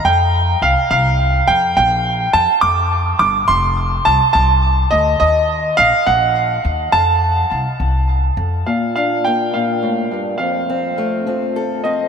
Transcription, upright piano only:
\new Staff \with { instrumentName = "Upright piano" } { \time 6/8 \key bes \major \tempo 4. = 70 g''4 f''8 f''4 g''8 | g''4 a''8 d'''4 d'''8 | c'''4 a''8 a''4 ees''8 | ees''4 f''8 ges''4 r8 |
a''2~ a''8 r8 | f''8 f''8 g''8 f''4 r8 | f''2~ f''8 ees''8 | }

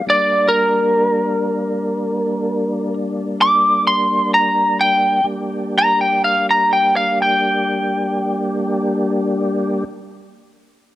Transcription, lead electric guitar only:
\new Staff \with { instrumentName = "Lead electric guitar" } { \time 12/8 \key g \minor \tempo 4. = 42 d''8 bes'2. r8 d'''8 c'''8 bes''8 g''8 | r8 bes''16 g''16 f''16 bes''16 g''16 f''16 g''1 | }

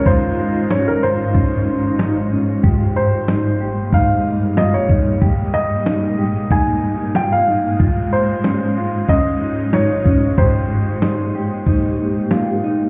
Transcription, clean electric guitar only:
\new Staff \with { instrumentName = "Clean electric guitar" } { \time 4/4 \key aes \major \tempo 4 = 93 f'4 des'8 f'8 des'4 ees'8 des'8 | g'4 ees'8 g'8 ees'4 f'8 ees'8 | g'4 ees'8 g'8 ees'4 f'8 ees'8 | f'4 des'8 f'8 des'4 ees'8 des'8 |
g'4 ees'8 g'8 ees'4 f'8 ees'8 | }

